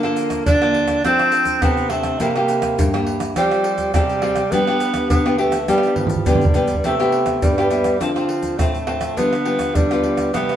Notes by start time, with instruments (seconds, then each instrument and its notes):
Already playing: nylon-string guitar D3, tenor saxophone A#3
0.03 nylon-string guitar A#3 F4 A4, pandeiro, tamborim, shaker
0.16 pandeiro, shaker
0.30 pandeiro, tamborim, shaker, surdo
0.46 nylon-string guitar D3, tenor saxophone D4, pandeiro, shaker, surdo
0.61 nylon-string guitar A#3 F4 A4, pandeiro, tamborim, shaker
0.74 pandeiro
0.88 pandeiro, tamborim, shaker, surdo
1.04 nylon-string guitar F3 C4 D4 A4, tenor saxophone C4, pandeiro, tamborim, shaker, surdo
1.19 pandeiro, tamborim, shaker
1.32 pandeiro, shaker
1.45 pandeiro, shaker, surdo
1.62 nylon-string guitar C3 C4 D4 A4, tenor saxophone B3, pandeiro, tamborim, shaker, surdo
1.77 pandeiro, shaker
1.89 tenor saxophone A3, nylon-string guitar C4 D4 A4, pandeiro, tamborim
2.03 pandeiro, tamborim, shaker, surdo
2.20 nylon-string guitar C3 A#3 E4 G4, tenor saxophone A#3, pandeiro, shaker, surdo
2.36 nylon-string guitar A#3 E4 G4, pandeiro, tamborim, shaker
2.48 pandeiro, shaker
2.62 pandeiro, tamborim, shaker, surdo
2.78 nylon-string guitar G2, pandeiro, shaker, surdo
2.93 nylon-string guitar A#3 E4 G4, pandeiro, tamborim, shaker
3.07 pandeiro
3.20 pandeiro, tamborim, shaker, surdo
3.36 nylon-string guitar F3 C4 G4, tenor saxophone G3, pandeiro, tamborim, shaker, surdo
3.51 pandeiro, tamborim, shaker
3.64 pandeiro
3.78 pandeiro, shaker, surdo
3.94 nylon-string guitar C3 G#3 C4 G4, tenor saxophone G3, pandeiro, tamborim, shaker, surdo
4.10 pandeiro, shaker
4.22 nylon-string guitar G#3 C4 G4, pandeiro, tamborim
4.35 pandeiro, tamborim, shaker, surdo
4.52 nylon-string guitar G3 B3 D4 G4, tenor saxophone B3, pandeiro, shaker, surdo
4.67 nylon-string guitar B3 D4 G4, pandeiro, tamborim, shaker
4.80 pandeiro, shaker
4.94 pandeiro, tamborim, shaker, surdo
5.10 nylon-string guitar D3, tenor saxophone B3, pandeiro, shaker, surdo
5.25 nylon-string guitar B3 D4 G4, pandeiro, tamborim, shaker
5.38 tenor saxophone A3, nylon-string guitar B3 D4 G4, pandeiro
5.52 pandeiro, tamborim, shaker, surdo
5.68 nylon-string guitar G3 B3 D4 G4, tenor saxophone G3, pandeiro, tamborim, shaker, surdo
5.78 tamborim
5.83 pandeiro, shaker
5.87 tamborim
5.96 tenor saxophone F3, surdo, pandeiro
6.07 surdo, pandeiro, shaker
6.09 surdo
6.16 surdo
6.26 nylon-string guitar D3 B3 D4 G4, tenor saxophone G3, surdo, pandeiro, shaker
6.35 surdo
6.41 pandeiro, shaker, surdo
6.54 nylon-string guitar B3 D4 G4, pandeiro, shaker, surdo
6.67 pandeiro, shaker, surdo
6.74 surdo
6.84 nylon-string guitar C3 B3 E4 G4, tenor saxophone A3, pandeiro, shaker, surdo
6.99 nylon-string guitar B3 E4 G4, pandeiro, tamborim, shaker
7.12 pandeiro
7.26 pandeiro, tamborim, shaker, surdo
7.42 nylon-string guitar G2, tenor saxophone G3, pandeiro, shaker, surdo
7.58 nylon-string guitar B3 E4 G4, pandeiro, tamborim, shaker
7.70 nylon-string guitar B3 E4 G4, pandeiro, shaker
7.84 pandeiro, tamborim, shaker, surdo
8.00 nylon-string guitar D3 C4 F4 A4, tenor saxophone F3, pandeiro, tamborim, shaker, surdo
8.15 nylon-string guitar C4 F4 A4, pandeiro, tamborim, shaker
8.29 pandeiro
8.42 pandeiro, shaker, surdo
8.58 nylon-string guitar A2 C4 F4 A4, tenor saxophone A3, pandeiro, tamborim, shaker, surdo
8.74 pandeiro, shaker
8.87 nylon-string guitar C4 F4 A4, pandeiro, tamborim
9.01 pandeiro, tamborim, shaker, surdo
9.17 nylon-string guitar D3 G3 B3 F4, tenor saxophone B3, pandeiro, shaker, surdo
9.33 pandeiro, tamborim, shaker
9.45 nylon-string guitar G3 B3 F4, pandeiro
9.59 pandeiro, tamborim, shaker, surdo
9.75 nylon-string guitar D3, tenor saxophone G3, pandeiro, shaker, surdo
9.91 nylon-string guitar G3 B3 F4, pandeiro, tamborim, shaker
10.04 pandeiro
10.17 pandeiro, tamborim, shaker, surdo
10.33 nylon-string guitar C3 G3 B3 E4, tenor saxophone B3, pandeiro, tamborim, shaker, surdo
10.49 pandeiro, tamborim, shaker